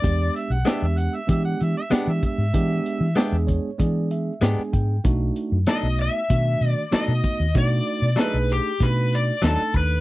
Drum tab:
HH |xxxxxxxx|xxxxxxxx|xxxxxxxx|xxxxxxxx|
TB |--x---x-|--x---x-|--x---x-|--x---x-|
SD |--o---o-|--o---o-|--o---o-|--o---o-|
BD |o---o--o|o--oo--o|o---o--o|o---o--o|